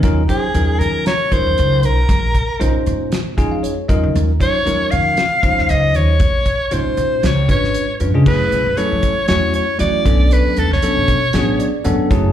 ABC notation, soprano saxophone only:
X:1
M:4/4
L:1/16
Q:"Swing 16ths" 1/4=117
K:Ebdor
V:1 name="Soprano saxophone"
z2 A4 B2 d2 c4 B2- | B6 z8 z2 | z2 d4 f6 e2 d2- | d4 c4 d2 d4 z2 |
[K:F#m] B4 c4 c2 c2 d4 | B2 A c8 z4 z |]